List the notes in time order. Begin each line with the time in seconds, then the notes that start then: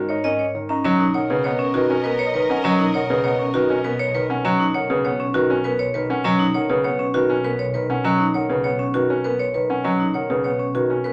Already playing: G#2 D#3 C#5
0.09 D#4 C#5 D#5
0.24 C#4 A#4 D#5
0.39 C#5
0.55 D#3 C#5
0.69 C#4 D#4 A#5
0.84 B1 F#3 C#4 A#4 D#5
0.99 D#4
1.14 D#3 C#5 F#5
1.30 C#3 B4
1.44 B3 C#5 F#5
1.59 C#4
1.74 D#3 F#4 B4
1.90 C#4
2.04 B3 A#4 B4
2.19 C#5
2.34 D#3 B4
2.50 C#4 F#5
2.64 F#3 C#4 D#5
2.79 D#4
2.94 D#3 C#5 F#5
3.10 C#3 B4
3.24 B3 C#5 F#5
3.39 C#4
3.54 D#3 F#4 B4
3.70 C#4 C#5
3.84 B3 A#4 B4
3.99 C#5
4.15 D#3 B4
4.30 C#4 F#5
4.45 F#3 C#4 D#5
4.60 D#4
4.75 D#3 C#5 F#5
4.90 C#3 B4
5.05 B3 C#5 F#5
5.20 C#4
5.34 D#3 F#4 B4
5.50 C#4 C#5
5.64 B3 A#4 B4
5.79 C#5
5.94 D#3 B4
6.10 C#4 F#5
6.24 F#3 C#4 D#5
6.39 D#4
6.54 D#3 C#5 F#5
6.70 C#3 B4
6.84 B3 C#5 F#5
6.99 C#4
7.14 D#3 F#4 B4
7.30 C#4 C#5
7.44 B3 A#4 B4
7.59 C#5
7.74 D#3 B4
7.90 C#4 F#5
8.05 F#3 C#4 D#5
8.19 D#4
8.34 D#3 C#5 F#5
8.49 C#3 B4
8.64 B3 C#5 F#5
8.79 C#4
8.94 D#3 F#4 B4
9.09 C#4 C#5
9.24 B3 A#4 B4
9.40 C#5
9.54 D#3 B4
9.70 C#4 F#5
9.84 F#3 C#4 D#5
10.00 D#4
10.14 D#3 C#5 F#5
10.30 C#3 B4
10.44 B3 C#5 F#5
10.60 C#4
10.75 D#3 F#4 B4
10.90 C#4 C#5
11.04 B3 A#4 B4